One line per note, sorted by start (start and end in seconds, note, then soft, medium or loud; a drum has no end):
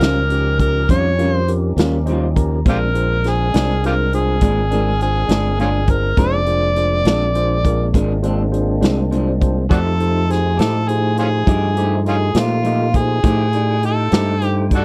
0.00 0.86 C#2 medium
0.00 2.61 F3 medium
0.00 0.20 G3 soft
0.00 2.61 C#4 medium
0.00 0.23 C#4 soft
0.00 0.19 C#4 soft
0.00 2.61 D#4 medium
0.00 0.18 F4 soft
0.00 0.23 F4 medium
0.00 2.61 G4 medium
0.00 0.23 G4 soft
0.00 0.56 A#4 medium
0.00 0.23 C5 medium
0.00 snare medium
0.00 closed hi-hat medium
0.30 0.52 C#4 medium
0.30 0.53 F4 soft
0.30 0.53 G4 soft
0.30 0.53 A#4 medium
0.30 closed hi-hat medium
0.59 0.82 C#4 medium
0.59 0.82 F4 soft
0.59 0.82 G4 soft
0.59 0.82 A#4 medium
0.59 0.87 A#4 medium
0.59 kick medium
0.59 closed hi-hat medium
0.89 1.75 F2 medium
0.89 1.07 D#3 medium
0.89 1.08 G3 medium
0.89 1.11 C#4 soft
0.89 1.08 C#4 medium
0.89 1.12 F4 soft
0.89 1.08 F4 medium
0.89 1.11 G4 soft
0.89 1.11 C#5 medium
0.89 1.33 C#5 medium
0.89 kick medium
0.89 closed hi-hat medium
1.18 1.40 C#4 medium
1.18 1.37 C#4 soft
1.18 1.40 F4 soft
1.18 1.37 F4 soft
1.18 1.41 G4 soft
1.18 1.41 A#4 medium
1.18 closed hi-hat medium
1.23 1.38 G3 soft
1.33 1.52 C5 medium
1.48 1.70 C#4 medium
1.48 1.70 F4 soft
1.48 1.70 G4 medium
1.48 1.70 A#4 medium
1.48 closed hi-hat medium
1.77 2.62 D#2 medium
1.77 1.99 C#4 medium
1.77 1.99 F4 medium
1.77 1.96 F4 medium
1.77 2.00 G4 medium
1.77 2.00 A#4 medium
1.77 snare medium
1.77 closed hi-hat medium
1.82 1.98 G3 soft
1.82 1.97 C#4 soft
2.06 2.26 D#3 medium
2.06 2.28 C#4 medium
2.06 2.28 F4 medium
2.06 2.28 G4 medium
2.06 2.29 C5 medium
2.06 2.34 D#5 medium
2.06 closed hi-hat medium
2.10 2.26 G3 medium
2.10 2.26 C#4 medium
2.10 2.27 F4 medium
2.36 2.58 C#4 medium
2.36 2.58 F4 medium
2.36 2.58 G4 medium
2.36 2.58 A#4 medium
2.36 2.63 A#5 soft
2.36 kick medium
2.36 closed hi-hat medium
2.65 3.51 A#1 medium
2.65 2.84 A#2 medium
2.65 6.15 G#3 medium
2.65 2.84 G#3 medium
2.65 6.15 C4 medium
2.65 2.84 C4 medium
2.65 2.87 D4 medium
2.65 6.15 D4 medium
2.65 2.87 F4 medium
2.65 2.87 G#4 medium
2.65 6.15 A#4 medium
2.65 2.88 C5 medium
2.65 kick medium
2.65 closed hi-hat medium
2.69 2.85 D4 medium
2.69 2.78 F4 medium
2.69 2.77 G4 medium
2.69 3.30 A#4 medium
2.94 3.17 D4 medium
2.94 3.17 F4 soft
2.94 3.17 G#4 soft
2.94 3.17 C5 medium
2.94 closed hi-hat medium
3.24 3.47 D4 medium
3.24 3.47 F4 soft
3.24 3.47 G#4 soft
3.24 3.47 C5 medium
3.24 snare soft
3.24 closed hi-hat medium
3.29 3.85 G#4 medium
3.54 4.40 C2 medium
3.54 3.73 G#3 soft
3.54 3.72 C4 soft
3.54 3.71 D4 soft
3.54 3.76 D4 medium
3.54 3.76 F4 soft
3.54 3.76 G#4 soft
3.54 3.76 C5 medium
3.54 snare medium
3.54 closed hi-hat medium
3.84 4.06 D4 medium
3.84 4.06 F4 soft
3.84 3.94 F4 medium
3.84 3.94 G4 medium
3.84 4.06 G#4 soft
3.84 4.12 A#4 medium
3.84 4.06 C5 medium
3.84 closed hi-hat medium
4.13 4.35 D4 medium
4.13 4.35 F4 soft
4.13 4.35 G#4 soft
4.13 4.97 G#4 medium
4.13 4.35 C5 medium
4.13 closed hi-hat medium
4.41 5.27 G#1 medium
4.41 4.59 A#2 medium
4.41 4.60 G#3 medium
4.41 4.60 C4 medium
4.41 4.64 D4 soft
4.41 4.60 D4 medium
4.41 4.64 F4 soft
4.41 4.64 G#4 soft
4.41 4.64 D5 medium
4.41 kick medium
4.41 closed hi-hat medium
4.71 4.90 G#3 soft
4.71 4.90 C4 soft
4.71 4.89 D4 soft
4.71 4.94 D4 medium
4.71 4.93 F4 soft
4.71 4.93 G#4 medium
4.71 4.94 A#4 medium
4.71 closed hi-hat medium
5.01 5.23 D4 medium
5.01 5.23 F4 soft
5.01 5.56 G#4 medium
5.01 5.23 G#4 soft
5.01 5.23 C5 medium
5.01 closed hi-hat medium
5.29 6.15 G1 medium
5.29 5.48 G#3 soft
5.29 5.48 C4 soft
5.29 5.47 D4 soft
5.29 5.52 D4 medium
5.29 5.52 F4 soft
5.29 5.52 G#4 soft
5.29 5.52 C5 medium
5.29 snare medium
5.29 closed hi-hat medium
5.59 5.77 A#2 medium
5.59 5.77 G#3 soft
5.59 5.78 C4 medium
5.59 5.68 C#4 medium
5.59 5.81 D4 medium
5.59 5.78 D4 medium
5.59 5.82 F4 soft
5.59 5.69 F4 medium
5.59 5.92 G#4 medium
5.59 5.82 G#4 soft
5.59 5.82 D5 medium
5.59 closed hi-hat medium
5.87 6.11 D4 soft
5.87 6.11 F4 soft
5.87 6.11 G#4 soft
5.87 6.20 A#4 medium
5.87 6.11 C5 medium
5.87 kick medium
5.87 closed hi-hat medium
6.17 7.03 F1 medium
6.17 6.35 A#2 medium
6.17 6.36 G#3 medium
6.17 6.47 A3 medium
6.17 6.47 B3 medium
6.17 6.36 C4 medium
6.17 6.47 C#4 medium
6.17 6.40 D4 medium
6.17 6.37 D4 medium
6.17 6.47 D#4 medium
6.17 6.40 F4 medium
6.17 6.40 G#4 medium
6.17 6.40 C5 medium
6.17 7.95 D5 loud
6.17 kick medium
6.17 closed hi-hat medium
6.46 9.67 G#3 medium
6.46 9.67 A#3 medium
6.46 9.67 C4 medium
6.46 9.67 D4 medium
6.46 6.69 D4 medium
6.46 6.69 F4 soft
6.46 6.69 G#4 soft
6.46 6.69 C5 medium
6.46 closed hi-hat medium
6.76 6.98 D4 soft
6.76 6.98 F4 soft
6.76 6.98 G#4 soft
6.76 6.99 C5 medium
6.76 closed hi-hat medium
7.05 7.91 A#1 medium
7.05 7.25 G#3 soft
7.05 7.25 C4 soft
7.05 7.28 D4 medium
7.05 7.24 D4 soft
7.05 7.28 F4 medium
7.05 7.28 G#4 medium
7.05 7.28 D5 medium
7.05 snare loud
7.05 closed hi-hat medium
7.35 7.57 D4 medium
7.35 7.57 F4 medium
7.35 7.57 G#4 medium
7.35 7.57 C5 medium
7.35 closed hi-hat medium
7.65 7.87 D4 medium
7.65 7.87 F4 medium
7.65 7.87 G#4 medium
7.65 7.87 A#4 medium
7.65 kick medium
7.65 closed hi-hat medium
7.94 8.80 G#1 medium
7.94 8.12 A#2 medium
7.94 8.12 G#3 medium
7.94 8.13 C4 medium
7.94 8.16 D4 medium
7.94 8.13 D4 medium
7.94 8.16 F4 soft
7.94 8.16 G#4 medium
7.94 8.17 A#4 medium
7.94 kick medium
7.94 closed hi-hat medium
8.23 8.43 G#3 soft
8.23 8.42 C4 soft
8.23 8.45 D4 medium
8.23 8.42 D4 medium
8.23 8.45 F4 medium
8.23 8.45 G#4 medium
8.23 8.45 C5 medium
8.23 closed hi-hat medium
8.52 8.74 D4 medium
8.52 8.75 F4 medium
8.52 8.75 G#4 medium
8.52 8.75 C5 medium
8.52 closed hi-hat medium
8.81 9.68 C2 medium
8.81 9.01 G#3 soft
8.81 9.01 C4 soft
8.81 9.04 D4 medium
8.81 9.00 D4 medium
8.81 9.04 F4 medium
8.81 9.04 G#4 medium
8.81 9.04 C5 medium
8.81 snare medium
8.81 closed hi-hat medium
9.11 9.29 A#2 medium
9.11 9.30 G#3 medium
9.11 9.31 C4 medium
9.11 9.34 D4 medium
9.11 9.31 D4 medium
9.11 9.34 F4 medium
9.11 9.34 G#4 medium
9.11 9.34 C5 medium
9.11 closed hi-hat medium
9.41 9.63 D4 medium
9.41 9.63 F4 soft
9.41 9.63 G#4 soft
9.41 9.63 C5 medium
9.41 kick medium
9.41 closed hi-hat medium
9.69 10.56 F2 medium
9.69 9.88 F3 medium
9.69 13.20 F3 medium
9.69 9.88 A3 medium
9.69 13.21 A3 medium
9.69 9.77 D4 medium
9.69 9.92 D#4 medium
9.69 13.20 D#4 medium
9.69 9.89 D#4 medium
9.69 13.21 F4 medium
9.69 9.79 F#4 medium
9.69 9.92 G4 medium
9.69 9.89 G4 medium
9.69 9.92 A4 medium
9.69 10.32 A4 medium
9.69 9.93 C5 medium
9.69 kick medium
9.69 closed hi-hat medium
10.00 10.22 D#4 medium
10.00 10.22 G4 soft
10.00 10.22 A4 soft
10.00 10.22 C5 medium
10.00 closed hi-hat soft
10.29 10.52 D#4 medium
10.29 10.52 G4 soft
10.29 10.61 G#4 medium
10.29 10.52 A4 soft
10.29 10.52 C5 medium
10.29 snare soft
10.29 closed hi-hat medium
10.57 11.45 A2 medium
10.57 10.78 A3 soft
10.57 10.81 D#4 soft
10.57 10.77 D#4 soft
10.57 10.76 G4 soft
10.57 10.81 G4 soft
10.57 10.90 A4 medium
10.57 10.81 A4 soft
10.57 10.81 C5 medium
10.57 snare medium
10.57 closed hi-hat medium
10.89 11.11 D#4 soft
10.89 11.11 G4 soft
10.89 11.18 G#4 medium
10.89 11.11 A4 soft
10.89 11.11 C5 medium
10.89 closed hi-hat medium
11.17 11.27 C#4 medium
11.17 11.40 D#4 soft
11.17 11.27 F4 medium
11.17 11.40 G4 soft
11.17 12.03 G#4 medium
11.17 11.40 A4 soft
11.17 11.40 C5 medium
11.17 closed hi-hat medium
11.47 12.33 G2 medium
11.47 11.65 F3 medium
11.47 11.65 A3 medium
11.47 11.69 D#4 soft
11.47 11.66 D#4 medium
11.47 11.69 G4 soft
11.47 11.66 G4 medium
11.47 11.70 A4 soft
11.47 11.70 D#5 medium
11.47 kick medium
11.47 closed hi-hat medium
11.77 11.99 D#4 medium
11.77 11.96 D#4 soft
11.77 11.99 G4 soft
11.77 11.95 G4 soft
11.77 11.99 A4 soft
11.77 11.99 C5 medium
11.77 closed hi-hat medium
11.81 11.97 A3 soft
12.06 12.16 C#4 medium
12.06 12.29 D#4 soft
12.06 12.15 F4 medium
12.06 12.29 G4 soft
12.06 12.40 G#4 medium
12.06 12.29 A4 soft
12.06 12.29 D#5 medium
12.06 closed hi-hat medium
12.35 13.21 A#2 medium
12.35 12.55 A3 soft
12.35 12.58 D#4 soft
12.35 12.54 D#4 soft
12.35 12.53 G4 soft
12.35 12.58 G4 soft
12.35 12.58 A4 soft
12.35 12.58 C5 medium
12.35 snare medium
12.35 closed hi-hat medium
12.39 12.98 F4 medium
12.64 12.82 F3 soft
12.64 12.83 A3 soft
12.64 12.83 D#4 soft
12.64 12.88 D#4 soft
12.64 12.88 G4 soft
12.64 12.84 G4 medium
12.64 12.88 A4 soft
12.64 12.88 D#5 medium
12.64 closed hi-hat medium
12.94 13.17 D#4 soft
12.94 13.17 G4 soft
12.94 13.84 G#4 medium
12.94 13.18 A4 soft
12.94 13.18 C5 medium
12.94 kick medium
12.94 closed hi-hat medium
13.23 14.10 A2 medium
13.23 13.42 F3 medium
13.23 14.85 A3 medium
13.23 13.42 A3 medium
13.23 14.85 D#4 medium
13.23 13.46 D#4 medium
13.23 13.42 D#4 medium
13.23 14.85 F4 medium
13.23 13.47 G4 medium
13.23 13.43 G4 medium
13.23 13.47 A4 medium
13.23 13.47 C5 medium
13.23 14.85 G5 medium
13.23 kick medium
13.23 closed hi-hat medium
13.53 13.76 D#4 medium
13.53 13.77 G4 soft
13.53 13.76 A4 soft
13.53 13.77 D5 medium
13.53 closed hi-hat medium
13.83 14.05 D#4 medium
13.83 14.06 G4 soft
13.83 14.06 A4 soft
13.83 14.45 A4 medium
13.83 14.06 D#5 medium
13.83 closed hi-hat medium
14.12 14.85 G2 medium
14.12 14.34 D#4 medium
14.12 14.31 D#4 soft
14.12 14.34 G4 soft
14.12 14.31 G4 soft
14.12 14.34 A4 soft
14.12 14.35 C5 medium
14.12 snare loud
14.12 closed hi-hat medium
14.16 14.32 A3 soft
14.42 14.64 D#4 medium
14.42 14.64 G4 soft
14.42 14.69 G4 medium
14.42 14.64 A4 soft
14.42 14.64 C5 medium
14.42 closed hi-hat medium
14.71 14.83 D4 medium
14.71 14.85 D#4 medium
14.71 14.83 F#4 medium
14.71 14.85 G4 soft
14.71 14.85 A4 soft
14.71 14.85 A4 medium
14.71 14.85 D5 medium
14.71 kick medium
14.71 closed hi-hat medium